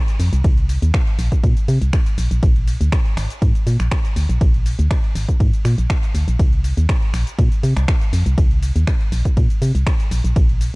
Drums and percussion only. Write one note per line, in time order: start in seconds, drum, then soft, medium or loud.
0.08 closed hi-hat medium
0.08 cabasa soft
0.20 open hi-hat loud
0.20 cabasa medium
0.33 closed hi-hat medium
0.33 cabasa soft
0.44 kick loud
0.44 ride medium
0.44 cabasa soft
0.58 closed hi-hat soft
0.69 open hi-hat loud
0.69 cabasa medium
0.82 closed hi-hat medium
0.82 cabasa soft
0.94 finger snap loud
0.94 kick loud
0.94 ride medium
0.94 cabasa soft
1.07 closed hi-hat soft
1.19 open hi-hat loud
1.19 cabasa medium
1.32 kick medium
1.32 closed hi-hat medium
1.32 cabasa soft
1.44 kick loud
1.44 ride medium
1.44 cabasa soft
1.57 closed hi-hat medium
1.57 cabasa soft
1.68 open hi-hat loud
1.68 cabasa medium
1.82 closed hi-hat medium
1.82 cabasa soft
1.93 finger snap loud
1.93 kick loud
1.93 ride medium
1.93 cabasa soft
2.06 closed hi-hat medium
2.06 cabasa soft
2.18 open hi-hat loud
2.18 cabasa medium
2.31 closed hi-hat medium
2.31 cabasa soft
2.43 kick loud
2.43 ride medium
2.43 cabasa soft
2.56 closed hi-hat soft
2.67 open hi-hat loud
2.67 cabasa medium
2.81 closed hi-hat medium
2.81 cabasa soft
2.92 finger snap loud
2.92 kick loud
2.92 ride medium
2.92 cabasa soft
3.05 closed hi-hat soft
3.17 finger snap medium
3.17 open hi-hat loud
3.17 cabasa medium
3.30 closed hi-hat medium
3.30 cabasa soft
3.42 kick loud
3.42 ride medium
3.42 cabasa soft
3.55 closed hi-hat medium
3.55 cabasa soft
3.67 open hi-hat loud
3.67 cabasa medium
3.80 finger snap medium
3.80 closed hi-hat medium
3.80 cabasa soft
3.91 finger snap loud
3.91 kick loud
3.91 ride medium
3.91 cabasa soft
4.05 closed hi-hat medium
4.05 cabasa soft
4.16 open hi-hat loud
4.16 cabasa medium
4.29 closed hi-hat medium
4.29 cabasa soft
4.41 kick loud
4.41 ride medium
4.41 cabasa soft
4.54 closed hi-hat soft
4.66 open hi-hat loud
4.66 cabasa medium
4.79 closed hi-hat medium
4.79 cabasa soft
4.91 finger snap loud
4.91 kick loud
4.91 ride medium
4.91 cabasa soft
5.04 closed hi-hat soft
5.15 open hi-hat loud
5.15 cabasa medium
5.29 kick medium
5.29 closed hi-hat medium
5.29 cabasa soft
5.40 kick loud
5.40 ride medium
5.40 cabasa soft
5.53 closed hi-hat soft
5.53 cabasa soft
5.65 finger snap medium
5.65 open hi-hat loud
5.65 cabasa medium
5.78 closed hi-hat medium
5.78 cabasa soft
5.90 finger snap loud
5.90 kick loud
5.90 ride medium
5.90 cabasa soft
6.03 closed hi-hat soft
6.03 cabasa soft
6.15 open hi-hat loud
6.15 cabasa medium
6.28 closed hi-hat medium
6.28 cabasa soft
6.39 kick loud
6.39 ride medium
6.39 cabasa soft
6.53 closed hi-hat soft
6.64 open hi-hat loud
6.64 cabasa medium
6.77 closed hi-hat medium
6.77 cabasa soft
6.89 finger snap loud
6.89 kick loud
6.89 ride medium
6.89 cabasa soft
7.02 closed hi-hat soft
7.14 finger snap medium
7.14 open hi-hat loud
7.14 cabasa medium
7.27 closed hi-hat medium
7.27 cabasa soft
7.39 kick loud
7.39 ride medium
7.39 cabasa soft
7.52 closed hi-hat soft
7.52 cabasa soft
7.63 open hi-hat loud
7.63 cabasa medium
7.77 finger snap medium
7.77 closed hi-hat medium
7.77 cabasa soft
7.88 finger snap loud
7.88 kick loud
7.88 ride medium
7.88 cabasa soft
8.01 closed hi-hat medium
8.01 cabasa soft
8.13 open hi-hat loud
8.13 cabasa medium
8.26 closed hi-hat medium
8.26 cabasa soft
8.38 kick loud
8.38 ride medium
8.38 cabasa soft
8.51 closed hi-hat soft
8.63 open hi-hat loud
8.63 cabasa medium
8.76 closed hi-hat medium
8.76 cabasa soft
8.87 finger snap loud
8.87 kick loud
8.87 ride medium
8.87 cabasa soft
9.01 closed hi-hat soft
9.12 open hi-hat loud
9.12 cabasa medium
9.25 kick medium
9.25 closed hi-hat medium
9.25 cabasa soft
9.37 kick loud
9.37 ride medium
9.37 cabasa soft
9.50 closed hi-hat medium
9.50 cabasa soft
9.62 open hi-hat loud
9.62 cabasa medium
9.75 closed hi-hat medium
9.75 cabasa soft
9.87 finger snap loud
9.87 kick loud
9.87 ride medium
9.87 cabasa soft
10.00 closed hi-hat medium
10.00 cabasa soft
10.11 open hi-hat loud
10.11 cabasa medium
10.25 closed hi-hat medium
10.25 cabasa soft
10.36 kick loud
10.36 ride medium
10.36 cabasa soft
10.49 closed hi-hat soft
10.61 open hi-hat loud
10.61 cabasa medium